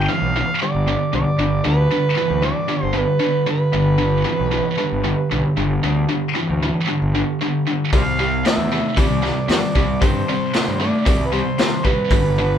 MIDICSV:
0, 0, Header, 1, 5, 480
1, 0, Start_track
1, 0, Key_signature, 1, "major"
1, 0, Tempo, 522648
1, 1526, Time_signature, 4, 2, 24, 8
1, 11555, End_track
2, 0, Start_track
2, 0, Title_t, "Harmonica"
2, 0, Program_c, 0, 22
2, 0, Note_on_c, 0, 79, 102
2, 86, Note_on_c, 0, 77, 97
2, 99, Note_off_c, 0, 79, 0
2, 566, Note_off_c, 0, 77, 0
2, 571, Note_on_c, 0, 74, 87
2, 1016, Note_off_c, 0, 74, 0
2, 1055, Note_on_c, 0, 74, 87
2, 1497, Note_off_c, 0, 74, 0
2, 1536, Note_on_c, 0, 71, 98
2, 2215, Note_off_c, 0, 71, 0
2, 2246, Note_on_c, 0, 74, 88
2, 2604, Note_off_c, 0, 74, 0
2, 2604, Note_on_c, 0, 72, 88
2, 2735, Note_on_c, 0, 71, 89
2, 2749, Note_off_c, 0, 72, 0
2, 3211, Note_off_c, 0, 71, 0
2, 3216, Note_on_c, 0, 71, 81
2, 5092, Note_off_c, 0, 71, 0
2, 7309, Note_on_c, 0, 72, 73
2, 7309, Note_on_c, 0, 74, 73
2, 7309, Note_on_c, 0, 77, 105
2, 7366, Note_off_c, 0, 74, 0
2, 7368, Note_off_c, 0, 72, 0
2, 7742, Note_off_c, 0, 77, 0
2, 7778, Note_on_c, 0, 76, 92
2, 8217, Note_off_c, 0, 76, 0
2, 8259, Note_on_c, 0, 74, 86
2, 8697, Note_off_c, 0, 74, 0
2, 8734, Note_on_c, 0, 74, 85
2, 9212, Note_on_c, 0, 72, 98
2, 9226, Note_off_c, 0, 74, 0
2, 9918, Note_off_c, 0, 72, 0
2, 9924, Note_on_c, 0, 74, 88
2, 10338, Note_on_c, 0, 71, 64
2, 10352, Note_off_c, 0, 74, 0
2, 10402, Note_on_c, 0, 72, 89
2, 10416, Note_off_c, 0, 71, 0
2, 10877, Note_on_c, 0, 71, 84
2, 10891, Note_off_c, 0, 72, 0
2, 11555, Note_off_c, 0, 71, 0
2, 11555, End_track
3, 0, Start_track
3, 0, Title_t, "Distorted electric guitar"
3, 0, Program_c, 1, 30
3, 82, Note_on_c, 1, 52, 80
3, 85, Note_on_c, 1, 43, 77
3, 299, Note_off_c, 1, 52, 0
3, 301, Note_off_c, 1, 43, 0
3, 327, Note_on_c, 1, 43, 62
3, 332, Note_on_c, 1, 52, 72
3, 542, Note_off_c, 1, 43, 0
3, 545, Note_off_c, 1, 52, 0
3, 565, Note_on_c, 1, 43, 78
3, 570, Note_on_c, 1, 50, 84
3, 781, Note_off_c, 1, 43, 0
3, 784, Note_off_c, 1, 50, 0
3, 802, Note_on_c, 1, 43, 61
3, 803, Note_on_c, 1, 50, 73
3, 1020, Note_off_c, 1, 43, 0
3, 1021, Note_off_c, 1, 50, 0
3, 1037, Note_on_c, 1, 43, 81
3, 1038, Note_on_c, 1, 50, 80
3, 1258, Note_off_c, 1, 43, 0
3, 1258, Note_off_c, 1, 50, 0
3, 1277, Note_on_c, 1, 43, 59
3, 1284, Note_on_c, 1, 50, 74
3, 1498, Note_off_c, 1, 43, 0
3, 1501, Note_off_c, 1, 50, 0
3, 1508, Note_on_c, 1, 43, 76
3, 1516, Note_on_c, 1, 50, 74
3, 1733, Note_off_c, 1, 43, 0
3, 1737, Note_off_c, 1, 50, 0
3, 1751, Note_on_c, 1, 43, 63
3, 1760, Note_on_c, 1, 50, 75
3, 1975, Note_off_c, 1, 43, 0
3, 1979, Note_off_c, 1, 50, 0
3, 1987, Note_on_c, 1, 43, 74
3, 1993, Note_on_c, 1, 52, 79
3, 2213, Note_off_c, 1, 43, 0
3, 2216, Note_off_c, 1, 52, 0
3, 2224, Note_on_c, 1, 43, 63
3, 2233, Note_on_c, 1, 52, 76
3, 2451, Note_off_c, 1, 43, 0
3, 2456, Note_off_c, 1, 52, 0
3, 2463, Note_on_c, 1, 43, 79
3, 2468, Note_on_c, 1, 50, 91
3, 2683, Note_off_c, 1, 43, 0
3, 2689, Note_off_c, 1, 50, 0
3, 2694, Note_on_c, 1, 43, 69
3, 2700, Note_on_c, 1, 50, 70
3, 2926, Note_off_c, 1, 43, 0
3, 2929, Note_off_c, 1, 50, 0
3, 2936, Note_on_c, 1, 43, 72
3, 2942, Note_on_c, 1, 50, 94
3, 3167, Note_off_c, 1, 43, 0
3, 3170, Note_off_c, 1, 50, 0
3, 3182, Note_on_c, 1, 43, 67
3, 3184, Note_on_c, 1, 50, 79
3, 3410, Note_off_c, 1, 43, 0
3, 3411, Note_off_c, 1, 50, 0
3, 3424, Note_on_c, 1, 43, 69
3, 3426, Note_on_c, 1, 50, 80
3, 3643, Note_off_c, 1, 43, 0
3, 3644, Note_off_c, 1, 50, 0
3, 3654, Note_on_c, 1, 43, 68
3, 3655, Note_on_c, 1, 50, 83
3, 3886, Note_off_c, 1, 43, 0
3, 3886, Note_off_c, 1, 50, 0
3, 3896, Note_on_c, 1, 43, 81
3, 3901, Note_on_c, 1, 52, 79
3, 4126, Note_off_c, 1, 43, 0
3, 4129, Note_off_c, 1, 52, 0
3, 4144, Note_on_c, 1, 43, 73
3, 4148, Note_on_c, 1, 52, 71
3, 4371, Note_off_c, 1, 43, 0
3, 4373, Note_off_c, 1, 52, 0
3, 4385, Note_on_c, 1, 43, 81
3, 4387, Note_on_c, 1, 50, 88
3, 4611, Note_off_c, 1, 43, 0
3, 4612, Note_off_c, 1, 50, 0
3, 4626, Note_on_c, 1, 43, 72
3, 4631, Note_on_c, 1, 50, 73
3, 4851, Note_off_c, 1, 43, 0
3, 4854, Note_off_c, 1, 50, 0
3, 4878, Note_on_c, 1, 43, 80
3, 4883, Note_on_c, 1, 50, 92
3, 5097, Note_off_c, 1, 43, 0
3, 5100, Note_off_c, 1, 50, 0
3, 5118, Note_on_c, 1, 50, 75
3, 5119, Note_on_c, 1, 43, 64
3, 5337, Note_off_c, 1, 43, 0
3, 5337, Note_off_c, 1, 50, 0
3, 5359, Note_on_c, 1, 43, 74
3, 5367, Note_on_c, 1, 50, 82
3, 5577, Note_off_c, 1, 43, 0
3, 5581, Note_off_c, 1, 50, 0
3, 5594, Note_on_c, 1, 50, 76
3, 5596, Note_on_c, 1, 43, 66
3, 5814, Note_off_c, 1, 50, 0
3, 5816, Note_off_c, 1, 43, 0
3, 5831, Note_on_c, 1, 43, 79
3, 5842, Note_on_c, 1, 52, 85
3, 6053, Note_off_c, 1, 43, 0
3, 6059, Note_off_c, 1, 52, 0
3, 6085, Note_on_c, 1, 43, 61
3, 6088, Note_on_c, 1, 52, 68
3, 6300, Note_off_c, 1, 43, 0
3, 6301, Note_off_c, 1, 52, 0
3, 6313, Note_on_c, 1, 43, 74
3, 6323, Note_on_c, 1, 50, 88
3, 6534, Note_off_c, 1, 43, 0
3, 6539, Note_off_c, 1, 50, 0
3, 6565, Note_on_c, 1, 43, 63
3, 6571, Note_on_c, 1, 50, 71
3, 6780, Note_off_c, 1, 43, 0
3, 6783, Note_off_c, 1, 50, 0
3, 6809, Note_on_c, 1, 43, 75
3, 6814, Note_on_c, 1, 50, 78
3, 7021, Note_off_c, 1, 43, 0
3, 7024, Note_off_c, 1, 50, 0
3, 7046, Note_on_c, 1, 43, 67
3, 7048, Note_on_c, 1, 50, 72
3, 7260, Note_off_c, 1, 43, 0
3, 7261, Note_off_c, 1, 50, 0
3, 7284, Note_on_c, 1, 48, 77
3, 7288, Note_on_c, 1, 55, 78
3, 7499, Note_off_c, 1, 48, 0
3, 7501, Note_off_c, 1, 55, 0
3, 7525, Note_on_c, 1, 48, 65
3, 7528, Note_on_c, 1, 55, 78
3, 7739, Note_off_c, 1, 48, 0
3, 7741, Note_off_c, 1, 55, 0
3, 7764, Note_on_c, 1, 57, 82
3, 7765, Note_on_c, 1, 48, 75
3, 7979, Note_off_c, 1, 48, 0
3, 7979, Note_off_c, 1, 57, 0
3, 8012, Note_on_c, 1, 48, 66
3, 8016, Note_on_c, 1, 57, 78
3, 8222, Note_off_c, 1, 48, 0
3, 8225, Note_off_c, 1, 57, 0
3, 8237, Note_on_c, 1, 48, 81
3, 8245, Note_on_c, 1, 55, 84
3, 8455, Note_off_c, 1, 48, 0
3, 8459, Note_off_c, 1, 55, 0
3, 8477, Note_on_c, 1, 48, 69
3, 8484, Note_on_c, 1, 55, 69
3, 8695, Note_off_c, 1, 48, 0
3, 8699, Note_off_c, 1, 55, 0
3, 8714, Note_on_c, 1, 48, 69
3, 8721, Note_on_c, 1, 55, 81
3, 8934, Note_off_c, 1, 48, 0
3, 8937, Note_off_c, 1, 55, 0
3, 8955, Note_on_c, 1, 48, 70
3, 8958, Note_on_c, 1, 55, 68
3, 9174, Note_off_c, 1, 48, 0
3, 9175, Note_off_c, 1, 55, 0
3, 9193, Note_on_c, 1, 48, 73
3, 9193, Note_on_c, 1, 55, 85
3, 9413, Note_off_c, 1, 48, 0
3, 9413, Note_off_c, 1, 55, 0
3, 9446, Note_on_c, 1, 48, 67
3, 9450, Note_on_c, 1, 55, 76
3, 9660, Note_off_c, 1, 48, 0
3, 9662, Note_off_c, 1, 55, 0
3, 9676, Note_on_c, 1, 48, 79
3, 9679, Note_on_c, 1, 57, 86
3, 9895, Note_off_c, 1, 48, 0
3, 9896, Note_off_c, 1, 57, 0
3, 9917, Note_on_c, 1, 48, 66
3, 9928, Note_on_c, 1, 57, 71
3, 10136, Note_off_c, 1, 48, 0
3, 10141, Note_off_c, 1, 57, 0
3, 10152, Note_on_c, 1, 48, 76
3, 10160, Note_on_c, 1, 55, 87
3, 10373, Note_off_c, 1, 48, 0
3, 10377, Note_off_c, 1, 55, 0
3, 10396, Note_on_c, 1, 48, 71
3, 10403, Note_on_c, 1, 55, 74
3, 10616, Note_off_c, 1, 48, 0
3, 10619, Note_off_c, 1, 55, 0
3, 10638, Note_on_c, 1, 48, 76
3, 10642, Note_on_c, 1, 55, 76
3, 10856, Note_off_c, 1, 48, 0
3, 10858, Note_off_c, 1, 55, 0
3, 10874, Note_on_c, 1, 48, 68
3, 10882, Note_on_c, 1, 55, 77
3, 11095, Note_off_c, 1, 48, 0
3, 11098, Note_off_c, 1, 55, 0
3, 11122, Note_on_c, 1, 43, 78
3, 11130, Note_on_c, 1, 50, 81
3, 11339, Note_off_c, 1, 43, 0
3, 11343, Note_off_c, 1, 50, 0
3, 11372, Note_on_c, 1, 43, 68
3, 11376, Note_on_c, 1, 50, 80
3, 11555, Note_off_c, 1, 43, 0
3, 11555, Note_off_c, 1, 50, 0
3, 11555, End_track
4, 0, Start_track
4, 0, Title_t, "Fingered electric bass"
4, 0, Program_c, 2, 33
4, 199, Note_on_c, 2, 35, 76
4, 385, Note_off_c, 2, 35, 0
4, 686, Note_on_c, 2, 31, 78
4, 869, Note_off_c, 2, 31, 0
4, 1043, Note_on_c, 2, 35, 83
4, 1135, Note_off_c, 2, 35, 0
4, 1273, Note_on_c, 2, 31, 89
4, 1461, Note_off_c, 2, 31, 0
4, 1526, Note_on_c, 2, 38, 89
4, 1709, Note_off_c, 2, 38, 0
4, 2115, Note_on_c, 2, 38, 74
4, 2302, Note_off_c, 2, 38, 0
4, 2601, Note_on_c, 2, 31, 80
4, 2786, Note_off_c, 2, 31, 0
4, 3436, Note_on_c, 2, 31, 86
4, 3897, Note_off_c, 2, 31, 0
4, 4038, Note_on_c, 2, 35, 75
4, 4223, Note_off_c, 2, 35, 0
4, 4522, Note_on_c, 2, 31, 79
4, 4706, Note_off_c, 2, 31, 0
4, 4886, Note_on_c, 2, 35, 77
4, 4977, Note_off_c, 2, 35, 0
4, 5121, Note_on_c, 2, 31, 91
4, 5305, Note_off_c, 2, 31, 0
4, 5365, Note_on_c, 2, 38, 83
4, 5548, Note_off_c, 2, 38, 0
4, 5964, Note_on_c, 2, 38, 73
4, 6146, Note_off_c, 2, 38, 0
4, 6446, Note_on_c, 2, 31, 78
4, 6628, Note_off_c, 2, 31, 0
4, 7281, Note_on_c, 2, 36, 83
4, 7739, Note_off_c, 2, 36, 0
4, 7875, Note_on_c, 2, 40, 74
4, 8060, Note_off_c, 2, 40, 0
4, 8352, Note_on_c, 2, 36, 79
4, 8538, Note_off_c, 2, 36, 0
4, 8712, Note_on_c, 2, 40, 77
4, 8807, Note_off_c, 2, 40, 0
4, 8958, Note_on_c, 2, 36, 90
4, 9142, Note_off_c, 2, 36, 0
4, 9198, Note_on_c, 2, 43, 85
4, 9383, Note_off_c, 2, 43, 0
4, 9807, Note_on_c, 2, 43, 75
4, 9988, Note_off_c, 2, 43, 0
4, 10285, Note_on_c, 2, 36, 81
4, 10467, Note_off_c, 2, 36, 0
4, 11116, Note_on_c, 2, 31, 86
4, 11555, Note_off_c, 2, 31, 0
4, 11555, End_track
5, 0, Start_track
5, 0, Title_t, "Drums"
5, 7281, Note_on_c, 9, 36, 93
5, 7281, Note_on_c, 9, 46, 41
5, 7372, Note_off_c, 9, 36, 0
5, 7373, Note_off_c, 9, 46, 0
5, 7763, Note_on_c, 9, 46, 43
5, 7771, Note_on_c, 9, 38, 99
5, 7855, Note_off_c, 9, 46, 0
5, 7863, Note_off_c, 9, 38, 0
5, 8239, Note_on_c, 9, 36, 96
5, 8241, Note_on_c, 9, 46, 44
5, 8331, Note_off_c, 9, 36, 0
5, 8333, Note_off_c, 9, 46, 0
5, 8489, Note_on_c, 9, 38, 29
5, 8581, Note_off_c, 9, 38, 0
5, 8718, Note_on_c, 9, 46, 47
5, 8726, Note_on_c, 9, 38, 99
5, 8810, Note_off_c, 9, 46, 0
5, 8818, Note_off_c, 9, 38, 0
5, 8959, Note_on_c, 9, 36, 74
5, 9051, Note_off_c, 9, 36, 0
5, 9200, Note_on_c, 9, 36, 103
5, 9202, Note_on_c, 9, 46, 44
5, 9292, Note_off_c, 9, 36, 0
5, 9294, Note_off_c, 9, 46, 0
5, 9679, Note_on_c, 9, 46, 44
5, 9687, Note_on_c, 9, 38, 93
5, 9770, Note_off_c, 9, 46, 0
5, 9779, Note_off_c, 9, 38, 0
5, 10161, Note_on_c, 9, 36, 102
5, 10163, Note_on_c, 9, 46, 47
5, 10253, Note_off_c, 9, 36, 0
5, 10255, Note_off_c, 9, 46, 0
5, 10640, Note_on_c, 9, 46, 46
5, 10649, Note_on_c, 9, 38, 102
5, 10732, Note_off_c, 9, 46, 0
5, 10741, Note_off_c, 9, 38, 0
5, 10880, Note_on_c, 9, 36, 75
5, 10972, Note_off_c, 9, 36, 0
5, 11117, Note_on_c, 9, 46, 44
5, 11120, Note_on_c, 9, 36, 91
5, 11209, Note_off_c, 9, 46, 0
5, 11211, Note_off_c, 9, 36, 0
5, 11555, End_track
0, 0, End_of_file